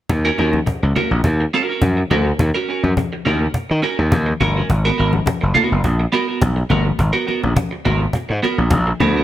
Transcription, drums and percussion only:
0.09 cajon bass loud
0.09 muted conga soft
0.38 muted conga soft
0.53 high conga medium
0.66 cajon bass loud
0.66 muted conga soft
0.66 high conga medium
0.96 low conga medium
1.24 cajon bass loud
1.82 cajon bass loud
1.82 muted conga soft
1.82 high conga medium
2.11 muted conga soft
2.11 high conga medium
2.11 low conga medium
2.39 cajon bass loud
2.39 muted conga soft
2.84 high conga medium
2.97 cajon bass medium
2.97 muted conga soft
2.97 high conga medium
3.26 low conga medium
3.54 cajon bass loud
4.12 cajon bass loud
4.12 high conga medium
4.41 high conga medium
4.41 low conga medium
4.70 cajon bass loud
5.13 high conga medium
5.26 cajon bass loud
5.26 cajon slap medium
5.26 muted conga soft
5.26 high conga medium
5.55 muted conga soft
5.55 low conga medium
5.84 cajon bass loud
5.84 muted conga soft
6.42 cajon bass loud
6.42 cajon slap loud
6.42 high conga medium
6.70 high conga medium
6.70 low conga medium
6.99 cajon bass loud
7.29 muted conga soft
7.44 high conga medium
7.57 cajon bass loud
7.57 cajon slap loud
7.57 muted conga soft
7.57 high conga medium
7.86 high conga medium
7.86 low conga medium
8.13 cajon bass loud
8.13 muted conga soft
8.45 muted conga soft
8.71 cajon bass loud
8.71 cajon slap loud
8.71 high conga medium
9.00 muted conga soft
9.00 high conga medium
9.00 low conga medium

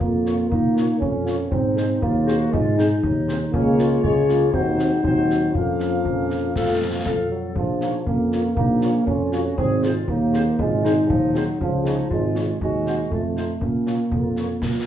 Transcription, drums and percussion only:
0.00 concert bass drum medium
0.26 snare soft
0.52 concert bass drum medium
0.77 snare soft
1.02 concert bass drum medium
1.27 snare soft
1.52 concert bass drum medium
1.77 snare soft
2.02 concert bass drum medium
2.28 snare soft
2.53 concert bass drum medium
2.79 snare soft
3.03 concert bass drum medium
3.29 snare soft
3.54 concert bass drum medium
3.79 snare soft
4.04 concert bass drum medium
4.29 snare soft
4.53 concert bass drum medium
4.79 snare soft
5.04 concert bass drum medium
5.30 snare soft
5.55 concert bass drum medium
5.80 snare soft
6.05 concert bass drum medium
6.30 snare soft
6.56 concert bass drum medium
6.56 snare medium
7.06 concert bass drum medium
7.06 snare soft
7.56 concert bass drum medium
7.81 snare soft
8.07 concert bass drum medium
8.32 snare soft
8.57 concert bass drum medium
8.81 snare soft
9.07 concert bass drum medium
9.32 snare soft
9.58 concert bass drum medium
9.83 snare soft
10.08 concert bass drum medium
10.34 snare soft
10.59 concert bass drum medium
10.85 snare soft
11.10 concert bass drum medium
11.35 snare soft
11.61 concert bass drum medium
11.86 snare soft
12.11 concert bass drum medium
12.35 snare soft
12.61 concert bass drum medium
12.87 snare soft
13.12 concert bass drum medium
13.37 snare soft
13.61 concert bass drum medium
13.87 snare soft
14.12 concert bass drum medium
14.36 snare soft
14.62 concert bass drum medium
14.62 snare medium

